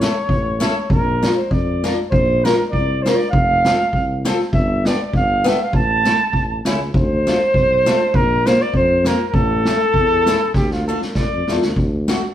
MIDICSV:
0, 0, Header, 1, 5, 480
1, 0, Start_track
1, 0, Key_signature, -1, "minor"
1, 0, Tempo, 604230
1, 715, Time_signature, 2, 2, 24, 8
1, 9805, End_track
2, 0, Start_track
2, 0, Title_t, "Flugelhorn"
2, 0, Program_c, 0, 56
2, 0, Note_on_c, 0, 73, 91
2, 687, Note_off_c, 0, 73, 0
2, 725, Note_on_c, 0, 70, 88
2, 1065, Note_off_c, 0, 70, 0
2, 1079, Note_on_c, 0, 72, 69
2, 1203, Note_on_c, 0, 74, 85
2, 1214, Note_off_c, 0, 72, 0
2, 1572, Note_off_c, 0, 74, 0
2, 1670, Note_on_c, 0, 72, 99
2, 1939, Note_on_c, 0, 70, 87
2, 1951, Note_off_c, 0, 72, 0
2, 2040, Note_off_c, 0, 70, 0
2, 2045, Note_on_c, 0, 70, 69
2, 2097, Note_off_c, 0, 70, 0
2, 2150, Note_on_c, 0, 74, 94
2, 2402, Note_on_c, 0, 72, 76
2, 2414, Note_off_c, 0, 74, 0
2, 2510, Note_on_c, 0, 74, 91
2, 2522, Note_off_c, 0, 72, 0
2, 2620, Note_off_c, 0, 74, 0
2, 2625, Note_on_c, 0, 77, 107
2, 3335, Note_off_c, 0, 77, 0
2, 3602, Note_on_c, 0, 76, 96
2, 3868, Note_on_c, 0, 74, 87
2, 3880, Note_off_c, 0, 76, 0
2, 3973, Note_off_c, 0, 74, 0
2, 3999, Note_on_c, 0, 74, 76
2, 4088, Note_off_c, 0, 74, 0
2, 4099, Note_on_c, 0, 77, 88
2, 4326, Note_off_c, 0, 77, 0
2, 4357, Note_on_c, 0, 76, 76
2, 4473, Note_on_c, 0, 77, 82
2, 4485, Note_off_c, 0, 76, 0
2, 4567, Note_off_c, 0, 77, 0
2, 4572, Note_on_c, 0, 81, 108
2, 5270, Note_off_c, 0, 81, 0
2, 5515, Note_on_c, 0, 72, 112
2, 6477, Note_on_c, 0, 70, 105
2, 6488, Note_off_c, 0, 72, 0
2, 6725, Note_on_c, 0, 72, 110
2, 6737, Note_off_c, 0, 70, 0
2, 6847, Note_on_c, 0, 74, 91
2, 6859, Note_off_c, 0, 72, 0
2, 6950, Note_off_c, 0, 74, 0
2, 6955, Note_on_c, 0, 72, 105
2, 7201, Note_on_c, 0, 70, 84
2, 7213, Note_off_c, 0, 72, 0
2, 7373, Note_off_c, 0, 70, 0
2, 7373, Note_on_c, 0, 70, 83
2, 7420, Note_on_c, 0, 69, 118
2, 7432, Note_off_c, 0, 70, 0
2, 8375, Note_off_c, 0, 69, 0
2, 8380, Note_on_c, 0, 67, 90
2, 8500, Note_off_c, 0, 67, 0
2, 8514, Note_on_c, 0, 65, 70
2, 8632, Note_off_c, 0, 65, 0
2, 8640, Note_on_c, 0, 69, 81
2, 8741, Note_off_c, 0, 69, 0
2, 8868, Note_on_c, 0, 74, 93
2, 9210, Note_off_c, 0, 74, 0
2, 9805, End_track
3, 0, Start_track
3, 0, Title_t, "Steel-string acoustic guitar"
3, 0, Program_c, 1, 25
3, 12, Note_on_c, 1, 61, 58
3, 15, Note_on_c, 1, 64, 53
3, 20, Note_on_c, 1, 69, 58
3, 111, Note_off_c, 1, 61, 0
3, 113, Note_off_c, 1, 64, 0
3, 113, Note_off_c, 1, 69, 0
3, 477, Note_on_c, 1, 61, 67
3, 484, Note_on_c, 1, 64, 79
3, 490, Note_on_c, 1, 69, 74
3, 585, Note_off_c, 1, 61, 0
3, 588, Note_off_c, 1, 64, 0
3, 590, Note_off_c, 1, 69, 0
3, 973, Note_on_c, 1, 62, 44
3, 980, Note_on_c, 1, 65, 48
3, 981, Note_on_c, 1, 70, 56
3, 1075, Note_off_c, 1, 62, 0
3, 1077, Note_off_c, 1, 65, 0
3, 1079, Note_off_c, 1, 70, 0
3, 1460, Note_on_c, 1, 62, 55
3, 1461, Note_on_c, 1, 65, 55
3, 1469, Note_on_c, 1, 70, 60
3, 1560, Note_off_c, 1, 62, 0
3, 1562, Note_off_c, 1, 65, 0
3, 1563, Note_off_c, 1, 70, 0
3, 1945, Note_on_c, 1, 62, 57
3, 1949, Note_on_c, 1, 65, 44
3, 1950, Note_on_c, 1, 70, 59
3, 2045, Note_off_c, 1, 62, 0
3, 2045, Note_off_c, 1, 65, 0
3, 2047, Note_off_c, 1, 70, 0
3, 2429, Note_on_c, 1, 62, 53
3, 2433, Note_on_c, 1, 65, 53
3, 2440, Note_on_c, 1, 70, 69
3, 2527, Note_off_c, 1, 65, 0
3, 2528, Note_off_c, 1, 62, 0
3, 2532, Note_off_c, 1, 70, 0
3, 2906, Note_on_c, 1, 60, 54
3, 2911, Note_on_c, 1, 65, 37
3, 2914, Note_on_c, 1, 69, 51
3, 3004, Note_off_c, 1, 60, 0
3, 3005, Note_off_c, 1, 65, 0
3, 3008, Note_off_c, 1, 69, 0
3, 3378, Note_on_c, 1, 60, 77
3, 3384, Note_on_c, 1, 65, 78
3, 3388, Note_on_c, 1, 69, 72
3, 3478, Note_off_c, 1, 60, 0
3, 3482, Note_off_c, 1, 65, 0
3, 3482, Note_off_c, 1, 69, 0
3, 3863, Note_on_c, 1, 59, 51
3, 3869, Note_on_c, 1, 67, 56
3, 3870, Note_on_c, 1, 62, 39
3, 3959, Note_off_c, 1, 59, 0
3, 3960, Note_off_c, 1, 62, 0
3, 3962, Note_off_c, 1, 67, 0
3, 4324, Note_on_c, 1, 59, 69
3, 4329, Note_on_c, 1, 62, 57
3, 4338, Note_on_c, 1, 67, 67
3, 4429, Note_off_c, 1, 59, 0
3, 4432, Note_off_c, 1, 62, 0
3, 4436, Note_off_c, 1, 67, 0
3, 4809, Note_on_c, 1, 57, 58
3, 4817, Note_on_c, 1, 61, 45
3, 4818, Note_on_c, 1, 64, 57
3, 4913, Note_off_c, 1, 57, 0
3, 4914, Note_off_c, 1, 61, 0
3, 4916, Note_off_c, 1, 64, 0
3, 5289, Note_on_c, 1, 57, 68
3, 5291, Note_on_c, 1, 61, 76
3, 5299, Note_on_c, 1, 64, 60
3, 5393, Note_off_c, 1, 57, 0
3, 5395, Note_off_c, 1, 61, 0
3, 5396, Note_off_c, 1, 64, 0
3, 5773, Note_on_c, 1, 57, 49
3, 5776, Note_on_c, 1, 62, 45
3, 5782, Note_on_c, 1, 65, 46
3, 5875, Note_off_c, 1, 57, 0
3, 5877, Note_off_c, 1, 62, 0
3, 5877, Note_off_c, 1, 65, 0
3, 6247, Note_on_c, 1, 57, 77
3, 6251, Note_on_c, 1, 62, 77
3, 6255, Note_on_c, 1, 65, 68
3, 6349, Note_off_c, 1, 57, 0
3, 6352, Note_off_c, 1, 62, 0
3, 6352, Note_off_c, 1, 65, 0
3, 6726, Note_on_c, 1, 58, 53
3, 6729, Note_on_c, 1, 60, 47
3, 6731, Note_on_c, 1, 65, 61
3, 6827, Note_off_c, 1, 58, 0
3, 6827, Note_off_c, 1, 60, 0
3, 6829, Note_off_c, 1, 65, 0
3, 7197, Note_on_c, 1, 58, 69
3, 7202, Note_on_c, 1, 60, 64
3, 7203, Note_on_c, 1, 65, 53
3, 7301, Note_off_c, 1, 58, 0
3, 7303, Note_off_c, 1, 65, 0
3, 7304, Note_off_c, 1, 60, 0
3, 7684, Note_on_c, 1, 57, 52
3, 7693, Note_on_c, 1, 61, 48
3, 7697, Note_on_c, 1, 64, 56
3, 7782, Note_off_c, 1, 57, 0
3, 7788, Note_off_c, 1, 61, 0
3, 7788, Note_off_c, 1, 64, 0
3, 8156, Note_on_c, 1, 57, 64
3, 8161, Note_on_c, 1, 61, 67
3, 8168, Note_on_c, 1, 64, 84
3, 8258, Note_off_c, 1, 57, 0
3, 8260, Note_off_c, 1, 61, 0
3, 8263, Note_off_c, 1, 64, 0
3, 8648, Note_on_c, 1, 57, 45
3, 8650, Note_on_c, 1, 62, 54
3, 8657, Note_on_c, 1, 65, 45
3, 8744, Note_off_c, 1, 57, 0
3, 8746, Note_off_c, 1, 62, 0
3, 8747, Note_off_c, 1, 65, 0
3, 9132, Note_on_c, 1, 57, 60
3, 9138, Note_on_c, 1, 65, 61
3, 9139, Note_on_c, 1, 62, 48
3, 9229, Note_off_c, 1, 57, 0
3, 9230, Note_off_c, 1, 62, 0
3, 9231, Note_off_c, 1, 65, 0
3, 9596, Note_on_c, 1, 57, 61
3, 9600, Note_on_c, 1, 62, 49
3, 9606, Note_on_c, 1, 66, 64
3, 9701, Note_off_c, 1, 57, 0
3, 9704, Note_off_c, 1, 62, 0
3, 9704, Note_off_c, 1, 66, 0
3, 9805, End_track
4, 0, Start_track
4, 0, Title_t, "Tuba"
4, 0, Program_c, 2, 58
4, 232, Note_on_c, 2, 33, 81
4, 546, Note_off_c, 2, 33, 0
4, 717, Note_on_c, 2, 34, 80
4, 1031, Note_off_c, 2, 34, 0
4, 1199, Note_on_c, 2, 41, 79
4, 1514, Note_off_c, 2, 41, 0
4, 1685, Note_on_c, 2, 34, 95
4, 1999, Note_off_c, 2, 34, 0
4, 2167, Note_on_c, 2, 36, 84
4, 2479, Note_off_c, 2, 36, 0
4, 2645, Note_on_c, 2, 29, 89
4, 2956, Note_off_c, 2, 29, 0
4, 3125, Note_on_c, 2, 36, 78
4, 3434, Note_off_c, 2, 36, 0
4, 3598, Note_on_c, 2, 31, 92
4, 3909, Note_off_c, 2, 31, 0
4, 4079, Note_on_c, 2, 31, 84
4, 4390, Note_off_c, 2, 31, 0
4, 4551, Note_on_c, 2, 33, 93
4, 4865, Note_off_c, 2, 33, 0
4, 5033, Note_on_c, 2, 33, 64
4, 5266, Note_off_c, 2, 33, 0
4, 5286, Note_on_c, 2, 37, 73
4, 5492, Note_off_c, 2, 37, 0
4, 5521, Note_on_c, 2, 38, 90
4, 5832, Note_off_c, 2, 38, 0
4, 5995, Note_on_c, 2, 35, 73
4, 6305, Note_off_c, 2, 35, 0
4, 6469, Note_on_c, 2, 34, 92
4, 6780, Note_off_c, 2, 34, 0
4, 6942, Note_on_c, 2, 41, 95
4, 7255, Note_off_c, 2, 41, 0
4, 7419, Note_on_c, 2, 33, 104
4, 7731, Note_off_c, 2, 33, 0
4, 7900, Note_on_c, 2, 40, 84
4, 8212, Note_off_c, 2, 40, 0
4, 8379, Note_on_c, 2, 38, 85
4, 8693, Note_off_c, 2, 38, 0
4, 8866, Note_on_c, 2, 33, 76
4, 8949, Note_off_c, 2, 33, 0
4, 8995, Note_on_c, 2, 41, 72
4, 9110, Note_off_c, 2, 41, 0
4, 9123, Note_on_c, 2, 40, 77
4, 9224, Note_off_c, 2, 40, 0
4, 9237, Note_on_c, 2, 38, 78
4, 9337, Note_off_c, 2, 38, 0
4, 9343, Note_on_c, 2, 38, 86
4, 9656, Note_off_c, 2, 38, 0
4, 9805, End_track
5, 0, Start_track
5, 0, Title_t, "Drums"
5, 9, Note_on_c, 9, 38, 80
5, 88, Note_off_c, 9, 38, 0
5, 230, Note_on_c, 9, 36, 65
5, 310, Note_off_c, 9, 36, 0
5, 483, Note_on_c, 9, 38, 72
5, 563, Note_off_c, 9, 38, 0
5, 715, Note_on_c, 9, 36, 79
5, 795, Note_off_c, 9, 36, 0
5, 974, Note_on_c, 9, 38, 77
5, 1054, Note_off_c, 9, 38, 0
5, 1200, Note_on_c, 9, 36, 65
5, 1279, Note_off_c, 9, 36, 0
5, 1457, Note_on_c, 9, 38, 59
5, 1536, Note_off_c, 9, 38, 0
5, 1686, Note_on_c, 9, 36, 78
5, 1765, Note_off_c, 9, 36, 0
5, 1949, Note_on_c, 9, 38, 80
5, 2028, Note_off_c, 9, 38, 0
5, 2170, Note_on_c, 9, 36, 54
5, 2249, Note_off_c, 9, 36, 0
5, 2426, Note_on_c, 9, 38, 69
5, 2505, Note_off_c, 9, 38, 0
5, 2530, Note_on_c, 9, 38, 20
5, 2609, Note_off_c, 9, 38, 0
5, 2646, Note_on_c, 9, 36, 89
5, 2726, Note_off_c, 9, 36, 0
5, 2896, Note_on_c, 9, 38, 89
5, 2976, Note_off_c, 9, 38, 0
5, 3122, Note_on_c, 9, 36, 54
5, 3202, Note_off_c, 9, 36, 0
5, 3372, Note_on_c, 9, 38, 67
5, 3452, Note_off_c, 9, 38, 0
5, 3490, Note_on_c, 9, 38, 21
5, 3569, Note_off_c, 9, 38, 0
5, 3598, Note_on_c, 9, 36, 77
5, 3678, Note_off_c, 9, 36, 0
5, 3852, Note_on_c, 9, 38, 74
5, 3931, Note_off_c, 9, 38, 0
5, 4079, Note_on_c, 9, 36, 62
5, 4158, Note_off_c, 9, 36, 0
5, 4340, Note_on_c, 9, 38, 67
5, 4419, Note_off_c, 9, 38, 0
5, 4554, Note_on_c, 9, 36, 81
5, 4633, Note_off_c, 9, 36, 0
5, 4804, Note_on_c, 9, 38, 67
5, 4883, Note_off_c, 9, 38, 0
5, 5031, Note_on_c, 9, 36, 57
5, 5110, Note_off_c, 9, 36, 0
5, 5282, Note_on_c, 9, 38, 72
5, 5361, Note_off_c, 9, 38, 0
5, 5399, Note_on_c, 9, 38, 19
5, 5478, Note_off_c, 9, 38, 0
5, 5515, Note_on_c, 9, 36, 82
5, 5595, Note_off_c, 9, 36, 0
5, 5773, Note_on_c, 9, 38, 72
5, 5852, Note_off_c, 9, 38, 0
5, 5992, Note_on_c, 9, 36, 66
5, 6071, Note_off_c, 9, 36, 0
5, 6243, Note_on_c, 9, 38, 66
5, 6322, Note_off_c, 9, 38, 0
5, 6467, Note_on_c, 9, 36, 79
5, 6546, Note_off_c, 9, 36, 0
5, 6717, Note_on_c, 9, 38, 78
5, 6797, Note_off_c, 9, 38, 0
5, 6834, Note_on_c, 9, 38, 23
5, 6914, Note_off_c, 9, 38, 0
5, 6940, Note_on_c, 9, 36, 63
5, 7019, Note_off_c, 9, 36, 0
5, 7184, Note_on_c, 9, 38, 62
5, 7263, Note_off_c, 9, 38, 0
5, 7417, Note_on_c, 9, 36, 80
5, 7496, Note_off_c, 9, 36, 0
5, 7667, Note_on_c, 9, 38, 73
5, 7746, Note_off_c, 9, 38, 0
5, 7896, Note_on_c, 9, 36, 63
5, 7975, Note_off_c, 9, 36, 0
5, 8151, Note_on_c, 9, 38, 65
5, 8230, Note_off_c, 9, 38, 0
5, 8374, Note_on_c, 9, 38, 41
5, 8376, Note_on_c, 9, 36, 82
5, 8454, Note_off_c, 9, 38, 0
5, 8456, Note_off_c, 9, 36, 0
5, 8509, Note_on_c, 9, 38, 37
5, 8589, Note_off_c, 9, 38, 0
5, 8752, Note_on_c, 9, 38, 46
5, 8831, Note_off_c, 9, 38, 0
5, 8856, Note_on_c, 9, 38, 56
5, 8860, Note_on_c, 9, 36, 56
5, 8936, Note_off_c, 9, 38, 0
5, 8940, Note_off_c, 9, 36, 0
5, 9115, Note_on_c, 9, 38, 66
5, 9194, Note_off_c, 9, 38, 0
5, 9230, Note_on_c, 9, 38, 63
5, 9309, Note_off_c, 9, 38, 0
5, 9345, Note_on_c, 9, 36, 71
5, 9424, Note_off_c, 9, 36, 0
5, 9595, Note_on_c, 9, 38, 76
5, 9674, Note_off_c, 9, 38, 0
5, 9805, End_track
0, 0, End_of_file